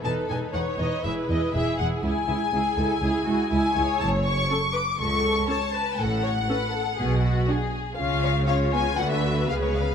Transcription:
<<
  \new Staff \with { instrumentName = "Violin section" } { \time 4/4 \key cis \minor \tempo 4 = 121 a''8 gis''8 fis''8 dis''8 e''8 dis''8 e''8 fis''8 | gis''2. gis''4 | \key fis \minor a''8 cis'''4 d'''8 cis'''4 a''4 | fis''2. r4 |
r8 cis''8 eis''8 gis''8 fis''16 e''8. eis''16 cis''16 eis''8 | }
  \new Staff \with { instrumentName = "Violin section" } { \time 4/4 \key cis \minor a'4 cis''4 b'4 gis'4 | e'8 e'8 gis'8 a'8 gis'8 fis'8 e'8 cis''8~ | \key fis \minor cis''4 a'8 b'8 a'4 cis''8 b'8 | a'8 cis''8 b'8 a'8 gis'8 fis'8 gis'4 |
eis''4 cis''4 b'2 | }
  \new Staff \with { instrumentName = "Viola section" } { \time 4/4 \key cis \minor << { b'8 b'8 b'8 b'8 gis'8 gis'8 gis'8 gis'8 | gis'8 gis'8 gis'8 gis'8 gis'8 gis'8 gis'8 gis'8 | \key fis \minor r4 a'4 r4 a'4 | r4 a'4 r4 gis'4 |
eis'4 eis'4 fis'4 gis'4 | } \\ { dis'8 dis'8 dis'8 dis'8 e'8 e'8 e'8 e'8 | e'8 e'8 e'8 e'8 e'8 e'8 e'8 e'8 | r4 cis'4 r4 cis'4 | r4 cis'4 r4 d'4 |
cis'4 cis'8 b8 a4 b4 | } >> }
  \new Staff \with { instrumentName = "Cello section" } { \clef bass \time 4/4 \key cis \minor e,8 e,8 e,8 e,8 e,8 e,8 e,8 e,8 | cis,8 cis,8 cis,8 cis,8 cis,8 cis,8 cis,8 cis,8 | \key fis \minor fis,4 r4 cis,4 r4 | a,4 r4 b,4 r4 |
cis2 d4 cis4 | }
  \new Staff \with { instrumentName = "Double bass section" } { \clef bass \time 4/4 \key cis \minor e,,8 e,,8 e,,8 e,,8 e,,8 e,,8 e,,8 e,,8 | cis,8 cis,8 cis,8 cis,8 cis,8 cis,8 cis,8 cis,8 | \key fis \minor fis,,4 r4 cis,4 r4 | a,,4 r4 b,,4 r4 |
cis,2 d,4 cis,4 | }
>>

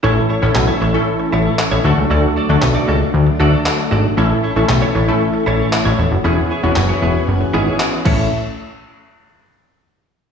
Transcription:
<<
  \new Staff \with { instrumentName = "Clean electric guitar" } { \time 4/4 \key a \major \tempo 4 = 116 <e' a' cis''>8 <e' a' cis''>16 <e' a' cis''>16 r16 <e' a' cis''>16 <e' a' cis''>8 r8 <e' a' cis''>16 <e' a' cis''>16 r16 <e' a' cis''>16 <fis' a' d''>16 r16 | <fis' a' d''>8 <fis' a' d''>16 <fis' a' d''>16 r16 <fis' a' d''>16 <fis' a' d''>8 r8 <fis' a' d''>16 <fis' a' d''>16 r8 <fis' a' d''>8 | <e' a' cis''>8 <e' a' cis''>16 <e' a' cis''>16 r16 <e' a' cis''>16 <e' a' cis''>8 r8 <e' a' cis''>16 <e' a' cis''>16 r16 <e' a' cis''>16 <e' a' cis''>16 r16 | <e' gis' cis''>8 <e' gis' cis''>16 <e' gis' cis''>16 r16 <e' gis' cis''>16 <e' gis' cis''>8 r8 <e' gis' cis''>16 <e' gis' cis''>16 r8 <e' a' cis''>16 r16 |
r1 | }
  \new Staff \with { instrumentName = "Analog polysynth" } { \time 4/4 \key a \major <a cis' e' a'>8. <a cis' e' a'>8. r16 <a cis' e' a'>4.~ <a cis' e' a'>16 <a d' fis' a'>8~ | <a d' fis' a'>8 r16 <a d' fis' a'>4. r16 <a d' fis' a'>4~ <a d' fis' a'>16 r16 | <a cis' e' a'>8. <a cis' e' a'>8. r16 <a cis' e' a'>4.~ <a cis' e' a'>16 r8 | <b cis' e' gis'>8. <b cis' e' fis'>4. r16 <b cis' e' gis'>4 <a cis' e' a'>8 |
r1 | }
  \new Staff \with { instrumentName = "String machine" } { \time 4/4 \key a \major << { <e cis'>2.~ <e cis'>8 <fis d'>8~ | <fis d'>1 | cis'1 | <b cis' gis'>2.~ <b cis' gis'>8 <a, a cis' e' e''>8 |
r1 | } \\ { a1~ | a1~ | a1 | fis'2.~ fis'8 r8 |
r1 | } >> }
  \new Staff \with { instrumentName = "Analog synth bass" } { \clef bass \time 4/4 \key a \major a,,8 r16 a,,16 b,,8 a,,8 r8 a,,8 r16 a,,16 d,16 cis,16 | d,8 r16 d,16 b,,8 cis,8 d,8 d,8 r8 gis,,8 | a,,8 r16 a,,16 b,,8 a,,8 r8 a,,8 r16 a,,16 e,,16 fis,,16 | e,,8 r16 e,,16 fis,,8 e,,8 fis,,8 gis,,8 r8 a,,8 |
r1 | }
  \new DrumStaff \with { instrumentName = "Drums" } \drummode { \time 4/4 r4 hc4 r4 hc4 | r4 hc4 r4 hc4 | r4 hc4 r4 hc4 | r4 hc4 r4 hc8 <cymc bd>8 |
r4 r4 r4 r4 | }
>>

